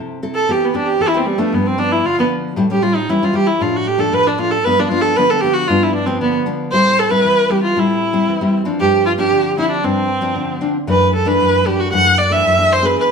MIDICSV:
0, 0, Header, 1, 3, 480
1, 0, Start_track
1, 0, Tempo, 520382
1, 443, Time_signature, 4, 2, 24, 8
1, 12097, End_track
2, 0, Start_track
2, 0, Title_t, "Viola"
2, 0, Program_c, 0, 41
2, 321, Note_on_c, 0, 69, 88
2, 471, Note_on_c, 0, 67, 80
2, 485, Note_off_c, 0, 69, 0
2, 598, Note_on_c, 0, 59, 68
2, 612, Note_off_c, 0, 67, 0
2, 695, Note_on_c, 0, 62, 82
2, 709, Note_off_c, 0, 59, 0
2, 794, Note_on_c, 0, 67, 91
2, 808, Note_off_c, 0, 62, 0
2, 935, Note_on_c, 0, 69, 107
2, 949, Note_off_c, 0, 67, 0
2, 996, Note_on_c, 0, 64, 85
2, 1010, Note_off_c, 0, 69, 0
2, 1080, Note_on_c, 0, 60, 77
2, 1094, Note_off_c, 0, 64, 0
2, 1165, Note_on_c, 0, 55, 82
2, 1179, Note_off_c, 0, 60, 0
2, 1276, Note_on_c, 0, 57, 84
2, 1290, Note_off_c, 0, 55, 0
2, 1422, Note_on_c, 0, 59, 78
2, 1436, Note_off_c, 0, 57, 0
2, 1538, Note_on_c, 0, 60, 84
2, 1552, Note_off_c, 0, 59, 0
2, 1649, Note_on_c, 0, 62, 95
2, 1663, Note_off_c, 0, 60, 0
2, 1771, Note_on_c, 0, 64, 81
2, 1785, Note_off_c, 0, 62, 0
2, 1899, Note_on_c, 0, 65, 99
2, 1913, Note_off_c, 0, 64, 0
2, 2012, Note_off_c, 0, 65, 0
2, 2028, Note_on_c, 0, 59, 80
2, 2093, Note_off_c, 0, 59, 0
2, 2504, Note_on_c, 0, 67, 88
2, 2604, Note_on_c, 0, 65, 94
2, 2617, Note_off_c, 0, 67, 0
2, 2725, Note_on_c, 0, 63, 83
2, 2739, Note_off_c, 0, 65, 0
2, 2857, Note_on_c, 0, 64, 77
2, 2871, Note_off_c, 0, 63, 0
2, 2990, Note_on_c, 0, 65, 79
2, 3004, Note_off_c, 0, 64, 0
2, 3093, Note_on_c, 0, 67, 100
2, 3107, Note_off_c, 0, 65, 0
2, 3199, Note_on_c, 0, 64, 83
2, 3213, Note_off_c, 0, 67, 0
2, 3337, Note_on_c, 0, 65, 77
2, 3351, Note_off_c, 0, 64, 0
2, 3468, Note_on_c, 0, 66, 84
2, 3482, Note_off_c, 0, 65, 0
2, 3571, Note_on_c, 0, 67, 91
2, 3585, Note_off_c, 0, 66, 0
2, 3686, Note_on_c, 0, 69, 89
2, 3700, Note_off_c, 0, 67, 0
2, 3813, Note_on_c, 0, 71, 104
2, 3827, Note_off_c, 0, 69, 0
2, 3939, Note_on_c, 0, 62, 72
2, 3953, Note_off_c, 0, 71, 0
2, 4049, Note_on_c, 0, 65, 96
2, 4063, Note_off_c, 0, 62, 0
2, 4158, Note_on_c, 0, 69, 87
2, 4172, Note_off_c, 0, 65, 0
2, 4284, Note_on_c, 0, 71, 100
2, 4298, Note_off_c, 0, 69, 0
2, 4418, Note_on_c, 0, 62, 68
2, 4432, Note_off_c, 0, 71, 0
2, 4513, Note_on_c, 0, 65, 102
2, 4527, Note_off_c, 0, 62, 0
2, 4621, Note_on_c, 0, 69, 91
2, 4635, Note_off_c, 0, 65, 0
2, 4762, Note_on_c, 0, 71, 98
2, 4776, Note_off_c, 0, 69, 0
2, 4888, Note_on_c, 0, 69, 91
2, 4902, Note_off_c, 0, 71, 0
2, 4988, Note_on_c, 0, 67, 101
2, 5002, Note_off_c, 0, 69, 0
2, 5104, Note_on_c, 0, 66, 96
2, 5118, Note_off_c, 0, 67, 0
2, 5236, Note_on_c, 0, 65, 90
2, 5250, Note_off_c, 0, 66, 0
2, 5376, Note_on_c, 0, 64, 80
2, 5390, Note_off_c, 0, 65, 0
2, 5470, Note_on_c, 0, 62, 88
2, 5484, Note_off_c, 0, 64, 0
2, 5586, Note_on_c, 0, 60, 76
2, 5600, Note_off_c, 0, 62, 0
2, 5715, Note_off_c, 0, 60, 0
2, 5721, Note_on_c, 0, 59, 90
2, 5866, Note_off_c, 0, 59, 0
2, 6206, Note_on_c, 0, 72, 99
2, 6448, Note_on_c, 0, 69, 90
2, 6462, Note_off_c, 0, 72, 0
2, 6556, Note_on_c, 0, 71, 97
2, 6569, Note_off_c, 0, 69, 0
2, 6927, Note_on_c, 0, 67, 88
2, 6941, Note_off_c, 0, 71, 0
2, 7042, Note_off_c, 0, 67, 0
2, 7048, Note_on_c, 0, 65, 87
2, 7187, Note_on_c, 0, 64, 79
2, 7201, Note_off_c, 0, 65, 0
2, 7894, Note_off_c, 0, 64, 0
2, 8123, Note_on_c, 0, 67, 101
2, 8346, Note_off_c, 0, 67, 0
2, 8356, Note_on_c, 0, 65, 90
2, 8411, Note_off_c, 0, 65, 0
2, 8469, Note_on_c, 0, 67, 104
2, 8810, Note_off_c, 0, 67, 0
2, 8848, Note_on_c, 0, 64, 89
2, 8950, Note_off_c, 0, 64, 0
2, 8956, Note_on_c, 0, 62, 88
2, 9081, Note_on_c, 0, 60, 86
2, 9095, Note_off_c, 0, 62, 0
2, 9800, Note_off_c, 0, 60, 0
2, 10058, Note_on_c, 0, 71, 93
2, 10273, Note_off_c, 0, 71, 0
2, 10287, Note_on_c, 0, 69, 85
2, 10402, Note_on_c, 0, 71, 95
2, 10416, Note_off_c, 0, 69, 0
2, 10761, Note_on_c, 0, 67, 88
2, 10774, Note_off_c, 0, 71, 0
2, 10881, Note_on_c, 0, 66, 86
2, 10895, Note_off_c, 0, 67, 0
2, 11000, Note_off_c, 0, 66, 0
2, 11005, Note_on_c, 0, 78, 113
2, 11235, Note_on_c, 0, 74, 100
2, 11249, Note_off_c, 0, 78, 0
2, 11363, Note_on_c, 0, 76, 101
2, 11377, Note_off_c, 0, 74, 0
2, 11737, Note_on_c, 0, 72, 100
2, 11750, Note_off_c, 0, 76, 0
2, 11856, Note_on_c, 0, 71, 85
2, 11870, Note_off_c, 0, 72, 0
2, 11967, Note_off_c, 0, 71, 0
2, 11993, Note_on_c, 0, 71, 90
2, 12093, Note_off_c, 0, 71, 0
2, 12097, End_track
3, 0, Start_track
3, 0, Title_t, "Nylon-string guitar"
3, 0, Program_c, 1, 24
3, 0, Note_on_c, 1, 48, 61
3, 0, Note_on_c, 1, 60, 58
3, 0, Note_on_c, 1, 64, 54
3, 0, Note_on_c, 1, 69, 63
3, 163, Note_off_c, 1, 60, 0
3, 164, Note_off_c, 1, 64, 0
3, 165, Note_off_c, 1, 69, 0
3, 208, Note_on_c, 1, 60, 57
3, 212, Note_on_c, 1, 64, 62
3, 213, Note_on_c, 1, 69, 64
3, 426, Note_off_c, 1, 48, 0
3, 427, Note_off_c, 1, 60, 0
3, 428, Note_off_c, 1, 64, 0
3, 429, Note_off_c, 1, 69, 0
3, 450, Note_on_c, 1, 59, 60
3, 451, Note_on_c, 1, 52, 78
3, 455, Note_on_c, 1, 60, 64
3, 458, Note_on_c, 1, 67, 67
3, 587, Note_off_c, 1, 59, 0
3, 591, Note_off_c, 1, 60, 0
3, 591, Note_off_c, 1, 67, 0
3, 679, Note_on_c, 1, 59, 58
3, 687, Note_on_c, 1, 60, 65
3, 689, Note_on_c, 1, 67, 61
3, 903, Note_off_c, 1, 52, 0
3, 928, Note_on_c, 1, 52, 78
3, 1004, Note_off_c, 1, 59, 0
3, 1006, Note_off_c, 1, 60, 0
3, 1008, Note_off_c, 1, 67, 0
3, 1050, Note_on_c, 1, 59, 58
3, 1053, Note_on_c, 1, 60, 61
3, 1056, Note_on_c, 1, 67, 70
3, 1249, Note_off_c, 1, 59, 0
3, 1249, Note_off_c, 1, 60, 0
3, 1252, Note_off_c, 1, 67, 0
3, 1269, Note_off_c, 1, 52, 0
3, 1273, Note_on_c, 1, 53, 70
3, 1278, Note_on_c, 1, 59, 64
3, 1282, Note_on_c, 1, 62, 65
3, 1407, Note_on_c, 1, 43, 70
3, 1600, Note_off_c, 1, 53, 0
3, 1603, Note_off_c, 1, 59, 0
3, 1605, Note_off_c, 1, 62, 0
3, 1640, Note_on_c, 1, 53, 60
3, 1645, Note_on_c, 1, 59, 65
3, 1646, Note_on_c, 1, 62, 57
3, 1862, Note_off_c, 1, 43, 0
3, 1867, Note_off_c, 1, 53, 0
3, 1870, Note_off_c, 1, 59, 0
3, 1870, Note_off_c, 1, 62, 0
3, 1885, Note_on_c, 1, 50, 70
3, 2015, Note_on_c, 1, 53, 56
3, 2020, Note_on_c, 1, 59, 61
3, 2027, Note_on_c, 1, 62, 69
3, 2331, Note_off_c, 1, 53, 0
3, 2334, Note_off_c, 1, 59, 0
3, 2337, Note_off_c, 1, 62, 0
3, 2341, Note_off_c, 1, 50, 0
3, 2364, Note_on_c, 1, 45, 81
3, 2369, Note_on_c, 1, 55, 70
3, 2375, Note_on_c, 1, 61, 58
3, 2375, Note_on_c, 1, 64, 66
3, 2438, Note_off_c, 1, 55, 0
3, 2439, Note_off_c, 1, 61, 0
3, 2442, Note_off_c, 1, 64, 0
3, 2489, Note_on_c, 1, 55, 60
3, 2494, Note_on_c, 1, 61, 61
3, 2500, Note_on_c, 1, 64, 62
3, 2569, Note_off_c, 1, 55, 0
3, 2571, Note_off_c, 1, 61, 0
3, 2574, Note_off_c, 1, 64, 0
3, 2602, Note_on_c, 1, 55, 57
3, 2607, Note_on_c, 1, 61, 63
3, 2610, Note_on_c, 1, 64, 61
3, 2745, Note_off_c, 1, 55, 0
3, 2746, Note_off_c, 1, 61, 0
3, 2749, Note_off_c, 1, 64, 0
3, 2821, Note_off_c, 1, 45, 0
3, 2851, Note_on_c, 1, 52, 81
3, 2852, Note_on_c, 1, 55, 58
3, 2855, Note_on_c, 1, 61, 73
3, 2860, Note_on_c, 1, 64, 69
3, 2929, Note_off_c, 1, 55, 0
3, 2931, Note_off_c, 1, 61, 0
3, 2934, Note_off_c, 1, 64, 0
3, 2974, Note_on_c, 1, 55, 65
3, 2979, Note_on_c, 1, 61, 62
3, 2981, Note_on_c, 1, 64, 70
3, 3051, Note_off_c, 1, 55, 0
3, 3052, Note_off_c, 1, 61, 0
3, 3054, Note_off_c, 1, 64, 0
3, 3071, Note_on_c, 1, 55, 64
3, 3078, Note_on_c, 1, 61, 65
3, 3079, Note_on_c, 1, 64, 67
3, 3220, Note_off_c, 1, 55, 0
3, 3222, Note_off_c, 1, 61, 0
3, 3223, Note_off_c, 1, 64, 0
3, 3304, Note_off_c, 1, 52, 0
3, 3325, Note_on_c, 1, 45, 71
3, 3330, Note_on_c, 1, 53, 61
3, 3335, Note_on_c, 1, 57, 58
3, 3336, Note_on_c, 1, 62, 63
3, 3551, Note_off_c, 1, 53, 0
3, 3552, Note_off_c, 1, 57, 0
3, 3555, Note_off_c, 1, 62, 0
3, 3669, Note_on_c, 1, 53, 64
3, 3675, Note_on_c, 1, 57, 58
3, 3679, Note_on_c, 1, 62, 67
3, 3782, Note_off_c, 1, 45, 0
3, 3804, Note_on_c, 1, 45, 74
3, 3999, Note_off_c, 1, 53, 0
3, 4001, Note_off_c, 1, 57, 0
3, 4003, Note_off_c, 1, 62, 0
3, 4039, Note_on_c, 1, 53, 62
3, 4044, Note_on_c, 1, 57, 60
3, 4050, Note_on_c, 1, 62, 65
3, 4196, Note_off_c, 1, 53, 0
3, 4199, Note_off_c, 1, 57, 0
3, 4202, Note_off_c, 1, 62, 0
3, 4260, Note_off_c, 1, 45, 0
3, 4296, Note_on_c, 1, 53, 68
3, 4297, Note_on_c, 1, 43, 77
3, 4300, Note_on_c, 1, 59, 64
3, 4305, Note_on_c, 1, 62, 68
3, 4371, Note_off_c, 1, 53, 0
3, 4374, Note_off_c, 1, 59, 0
3, 4376, Note_off_c, 1, 62, 0
3, 4420, Note_on_c, 1, 53, 67
3, 4425, Note_on_c, 1, 59, 65
3, 4431, Note_on_c, 1, 62, 70
3, 4494, Note_off_c, 1, 53, 0
3, 4495, Note_off_c, 1, 59, 0
3, 4499, Note_off_c, 1, 62, 0
3, 4522, Note_on_c, 1, 53, 61
3, 4529, Note_on_c, 1, 59, 53
3, 4533, Note_on_c, 1, 62, 71
3, 4725, Note_off_c, 1, 53, 0
3, 4728, Note_off_c, 1, 59, 0
3, 4730, Note_off_c, 1, 62, 0
3, 4746, Note_off_c, 1, 43, 0
3, 4773, Note_on_c, 1, 50, 85
3, 4777, Note_on_c, 1, 53, 65
3, 4780, Note_on_c, 1, 59, 65
3, 4784, Note_on_c, 1, 62, 69
3, 4851, Note_off_c, 1, 59, 0
3, 4852, Note_off_c, 1, 53, 0
3, 4856, Note_off_c, 1, 62, 0
3, 4897, Note_on_c, 1, 53, 62
3, 4901, Note_on_c, 1, 59, 62
3, 4904, Note_on_c, 1, 62, 65
3, 4972, Note_off_c, 1, 53, 0
3, 4974, Note_off_c, 1, 59, 0
3, 4976, Note_off_c, 1, 62, 0
3, 5010, Note_on_c, 1, 53, 62
3, 5015, Note_on_c, 1, 59, 70
3, 5019, Note_on_c, 1, 62, 71
3, 5209, Note_off_c, 1, 53, 0
3, 5211, Note_off_c, 1, 59, 0
3, 5212, Note_off_c, 1, 62, 0
3, 5225, Note_off_c, 1, 50, 0
3, 5250, Note_on_c, 1, 43, 76
3, 5252, Note_on_c, 1, 53, 58
3, 5257, Note_on_c, 1, 59, 64
3, 5260, Note_on_c, 1, 62, 71
3, 5569, Note_off_c, 1, 53, 0
3, 5570, Note_off_c, 1, 59, 0
3, 5573, Note_off_c, 1, 62, 0
3, 5594, Note_on_c, 1, 53, 63
3, 5600, Note_on_c, 1, 59, 64
3, 5605, Note_on_c, 1, 62, 69
3, 5703, Note_off_c, 1, 43, 0
3, 5728, Note_on_c, 1, 50, 71
3, 5920, Note_off_c, 1, 53, 0
3, 5924, Note_off_c, 1, 59, 0
3, 5925, Note_off_c, 1, 62, 0
3, 5958, Note_on_c, 1, 53, 60
3, 5961, Note_on_c, 1, 59, 61
3, 5966, Note_on_c, 1, 62, 69
3, 6182, Note_off_c, 1, 50, 0
3, 6182, Note_off_c, 1, 53, 0
3, 6182, Note_off_c, 1, 59, 0
3, 6185, Note_off_c, 1, 62, 0
3, 6207, Note_on_c, 1, 45, 74
3, 6209, Note_on_c, 1, 55, 64
3, 6212, Note_on_c, 1, 60, 63
3, 6214, Note_on_c, 1, 64, 68
3, 6527, Note_off_c, 1, 55, 0
3, 6528, Note_off_c, 1, 60, 0
3, 6530, Note_off_c, 1, 64, 0
3, 6549, Note_on_c, 1, 55, 65
3, 6553, Note_on_c, 1, 60, 59
3, 6558, Note_on_c, 1, 64, 72
3, 6661, Note_off_c, 1, 45, 0
3, 6685, Note_on_c, 1, 52, 74
3, 6877, Note_off_c, 1, 55, 0
3, 6879, Note_off_c, 1, 60, 0
3, 6881, Note_off_c, 1, 64, 0
3, 6915, Note_on_c, 1, 55, 56
3, 6921, Note_on_c, 1, 60, 62
3, 6921, Note_on_c, 1, 64, 67
3, 7121, Note_off_c, 1, 55, 0
3, 7122, Note_off_c, 1, 60, 0
3, 7123, Note_off_c, 1, 64, 0
3, 7140, Note_off_c, 1, 52, 0
3, 7160, Note_on_c, 1, 45, 71
3, 7163, Note_on_c, 1, 55, 53
3, 7165, Note_on_c, 1, 60, 58
3, 7166, Note_on_c, 1, 64, 65
3, 7482, Note_off_c, 1, 55, 0
3, 7485, Note_off_c, 1, 60, 0
3, 7485, Note_off_c, 1, 64, 0
3, 7500, Note_on_c, 1, 55, 52
3, 7505, Note_on_c, 1, 60, 62
3, 7506, Note_on_c, 1, 64, 61
3, 7618, Note_off_c, 1, 45, 0
3, 7640, Note_on_c, 1, 52, 63
3, 7713, Note_off_c, 1, 55, 0
3, 7714, Note_off_c, 1, 60, 0
3, 7716, Note_off_c, 1, 64, 0
3, 7758, Note_on_c, 1, 55, 60
3, 7766, Note_on_c, 1, 60, 58
3, 7766, Note_on_c, 1, 64, 63
3, 7962, Note_off_c, 1, 55, 0
3, 7965, Note_off_c, 1, 64, 0
3, 7966, Note_off_c, 1, 60, 0
3, 7979, Note_on_c, 1, 53, 68
3, 7984, Note_on_c, 1, 60, 65
3, 7987, Note_on_c, 1, 62, 69
3, 8097, Note_off_c, 1, 52, 0
3, 8119, Note_on_c, 1, 43, 75
3, 8432, Note_off_c, 1, 53, 0
3, 8433, Note_off_c, 1, 60, 0
3, 8436, Note_off_c, 1, 62, 0
3, 8464, Note_on_c, 1, 53, 58
3, 8468, Note_on_c, 1, 60, 55
3, 8471, Note_on_c, 1, 62, 67
3, 8576, Note_off_c, 1, 43, 0
3, 8599, Note_on_c, 1, 50, 81
3, 8794, Note_off_c, 1, 53, 0
3, 8797, Note_off_c, 1, 60, 0
3, 8797, Note_off_c, 1, 62, 0
3, 8834, Note_on_c, 1, 53, 58
3, 8839, Note_on_c, 1, 60, 61
3, 8840, Note_on_c, 1, 62, 76
3, 9039, Note_off_c, 1, 53, 0
3, 9041, Note_off_c, 1, 60, 0
3, 9042, Note_off_c, 1, 62, 0
3, 9056, Note_off_c, 1, 50, 0
3, 9069, Note_on_c, 1, 43, 67
3, 9074, Note_on_c, 1, 53, 56
3, 9077, Note_on_c, 1, 60, 55
3, 9079, Note_on_c, 1, 62, 64
3, 9301, Note_off_c, 1, 53, 0
3, 9304, Note_off_c, 1, 60, 0
3, 9305, Note_off_c, 1, 62, 0
3, 9417, Note_on_c, 1, 53, 61
3, 9423, Note_on_c, 1, 60, 66
3, 9426, Note_on_c, 1, 62, 69
3, 9532, Note_off_c, 1, 43, 0
3, 9552, Note_on_c, 1, 50, 63
3, 9750, Note_off_c, 1, 53, 0
3, 9754, Note_off_c, 1, 60, 0
3, 9754, Note_off_c, 1, 62, 0
3, 9785, Note_on_c, 1, 53, 57
3, 9788, Note_on_c, 1, 60, 57
3, 9792, Note_on_c, 1, 62, 63
3, 9934, Note_off_c, 1, 53, 0
3, 9936, Note_off_c, 1, 60, 0
3, 9936, Note_off_c, 1, 62, 0
3, 10012, Note_off_c, 1, 50, 0
3, 10030, Note_on_c, 1, 42, 83
3, 10033, Note_on_c, 1, 52, 64
3, 10033, Note_on_c, 1, 57, 63
3, 10039, Note_on_c, 1, 62, 65
3, 10261, Note_off_c, 1, 52, 0
3, 10261, Note_off_c, 1, 57, 0
3, 10265, Note_off_c, 1, 62, 0
3, 10378, Note_on_c, 1, 52, 67
3, 10383, Note_on_c, 1, 57, 67
3, 10387, Note_on_c, 1, 62, 76
3, 10491, Note_off_c, 1, 42, 0
3, 10521, Note_on_c, 1, 42, 79
3, 10710, Note_off_c, 1, 52, 0
3, 10711, Note_off_c, 1, 57, 0
3, 10715, Note_off_c, 1, 62, 0
3, 10751, Note_on_c, 1, 52, 57
3, 10756, Note_on_c, 1, 57, 60
3, 10757, Note_on_c, 1, 62, 66
3, 10957, Note_off_c, 1, 52, 0
3, 10959, Note_off_c, 1, 57, 0
3, 10959, Note_off_c, 1, 62, 0
3, 10976, Note_off_c, 1, 42, 0
3, 11001, Note_on_c, 1, 52, 63
3, 11003, Note_on_c, 1, 42, 72
3, 11007, Note_on_c, 1, 57, 61
3, 11011, Note_on_c, 1, 62, 63
3, 11225, Note_off_c, 1, 52, 0
3, 11228, Note_off_c, 1, 57, 0
3, 11230, Note_off_c, 1, 62, 0
3, 11344, Note_on_c, 1, 52, 59
3, 11347, Note_on_c, 1, 57, 56
3, 11353, Note_on_c, 1, 62, 63
3, 11457, Note_off_c, 1, 42, 0
3, 11478, Note_on_c, 1, 42, 66
3, 11554, Note_off_c, 1, 52, 0
3, 11554, Note_off_c, 1, 57, 0
3, 11558, Note_off_c, 1, 62, 0
3, 11597, Note_on_c, 1, 52, 63
3, 11602, Note_on_c, 1, 57, 59
3, 11608, Note_on_c, 1, 62, 73
3, 11800, Note_off_c, 1, 52, 0
3, 11801, Note_off_c, 1, 57, 0
3, 11805, Note_off_c, 1, 62, 0
3, 11825, Note_on_c, 1, 59, 58
3, 11829, Note_on_c, 1, 62, 70
3, 11834, Note_on_c, 1, 68, 75
3, 11934, Note_off_c, 1, 42, 0
3, 11959, Note_on_c, 1, 52, 74
3, 12097, Note_off_c, 1, 52, 0
3, 12097, Note_off_c, 1, 59, 0
3, 12097, Note_off_c, 1, 62, 0
3, 12097, Note_off_c, 1, 68, 0
3, 12097, End_track
0, 0, End_of_file